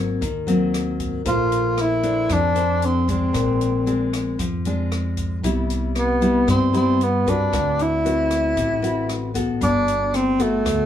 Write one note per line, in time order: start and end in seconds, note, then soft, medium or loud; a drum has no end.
0.00 0.17 G#1 medium
0.00 0.18 G#2 medium
0.00 0.21 F#3 medium
0.00 0.21 A#3 soft
0.00 0.21 C4 medium
0.21 1.22 D#2 medium
0.21 1.23 D#3 soft
0.21 kick soft
0.21 closed hi-hat medium
0.47 1.21 F#3 medium
0.47 1.21 A#3 medium
0.47 1.22 C4 medium
0.47 closed hi-hat soft
0.74 cross-stick soft
0.74 closed hi-hat soft
1.00 kick soft
1.00 closed hi-hat soft
1.25 2.26 A#1 medium
1.25 2.27 A#3 medium
1.25 1.99 D4 medium
1.25 1.83 F4 medium
1.25 2.00 A4 medium
1.25 2.00 C5 medium
1.25 kick medium
1.25 closed hi-hat medium
1.52 closed hi-hat soft
1.77 2.34 E4 medium
1.77 cross-stick soft
1.77 closed hi-hat soft
2.03 2.52 D4 medium
2.03 2.52 A4 medium
2.03 2.52 C5 medium
2.03 closed hi-hat soft
2.29 3.30 F2 medium
2.29 3.32 F3 medium
2.29 2.87 D4 medium
2.29 kick medium
2.29 cross-stick soft
2.29 closed hi-hat soft
2.55 3.04 D4 medium
2.55 3.04 A4 medium
2.55 3.04 C5 medium
2.55 closed hi-hat soft
2.82 3.10 C4 medium
2.82 closed hi-hat soft
3.08 3.82 G#3 medium
3.08 3.82 C4 medium
3.08 4.10 C4 medium
3.08 3.83 D4 medium
3.08 kick medium
3.08 closed hi-hat soft
3.33 4.35 A#1 medium
3.33 4.35 A#2 medium
3.33 kick medium
3.33 cross-stick soft
3.33 closed hi-hat medium
3.61 closed hi-hat soft
3.86 4.38 G#3 soft
3.86 4.38 C4 soft
3.86 4.39 D4 medium
3.86 closed hi-hat soft
4.13 cross-stick medium
4.13 closed hi-hat soft
4.39 5.39 F2 medium
4.39 5.40 F3 medium
4.39 kick medium
4.39 closed hi-hat soft
4.65 5.39 G#3 medium
4.65 5.40 C4 soft
4.65 5.40 D4 medium
4.65 closed hi-hat soft
4.92 cross-stick soft
4.92 closed hi-hat soft
5.17 kick soft
5.17 closed hi-hat soft
5.43 6.44 C2 medium
5.43 6.45 C3 medium
5.43 6.17 G3 medium
5.43 6.18 B3 medium
5.43 6.18 E4 medium
5.43 kick medium
5.43 closed hi-hat medium
5.70 closed hi-hat soft
5.95 6.45 B3 medium
5.95 cross-stick soft
5.95 closed hi-hat soft
6.21 6.69 G3 medium
6.21 6.70 B3 medium
6.21 6.70 E4 medium
6.21 closed hi-hat soft
6.47 7.49 G2 soft
6.47 7.48 G2 medium
6.47 6.73 C4 medium
6.47 kick medium
6.47 cross-stick soft
6.47 closed hi-hat soft
6.73 7.21 G3 medium
6.73 7.21 B3 medium
6.73 7.05 C4 medium
6.73 7.22 E4 medium
6.73 closed hi-hat soft
7.01 7.31 B3 medium
7.01 closed hi-hat soft
7.26 8.00 C4 soft
7.26 7.83 D4 medium
7.26 8.00 F#4 medium
7.26 8.00 B4 medium
7.26 kick soft
7.26 closed hi-hat soft
7.53 8.53 D2 medium
7.53 8.54 D3 medium
7.53 kick medium
7.53 cross-stick medium
7.53 closed hi-hat medium
7.79 9.37 E4 medium
7.79 closed hi-hat soft
8.05 8.78 C4 soft
8.05 8.79 F#4 soft
8.05 8.79 B4 medium
8.05 closed hi-hat soft
8.31 cross-stick medium
8.31 closed hi-hat soft
8.56 9.57 A1 medium
8.56 9.58 A2 medium
8.56 kick soft
8.56 closed hi-hat soft
8.82 9.30 C4 medium
8.82 9.30 F#4 medium
8.82 9.30 B4 medium
8.82 closed hi-hat soft
9.09 cross-stick soft
9.09 closed hi-hat soft
9.34 10.35 B3 medium
9.34 10.35 F#4 medium
9.34 10.35 A4 medium
9.34 kick soft
9.34 closed hi-hat soft
9.61 10.61 G1 medium
9.61 10.63 G3 medium
9.61 10.17 D4 medium
9.61 kick medium
9.61 closed hi-hat medium
9.88 closed hi-hat soft
10.14 10.44 C4 medium
10.14 cross-stick soft
10.14 closed hi-hat soft
10.39 10.86 A3 medium
10.39 10.86 B3 soft
10.39 10.86 F#4 soft
10.39 10.86 A4 medium
10.39 closed hi-hat soft
10.65 10.86 D2 medium
10.65 10.86 D3 medium
10.65 kick soft
10.65 cross-stick medium
10.65 closed hi-hat medium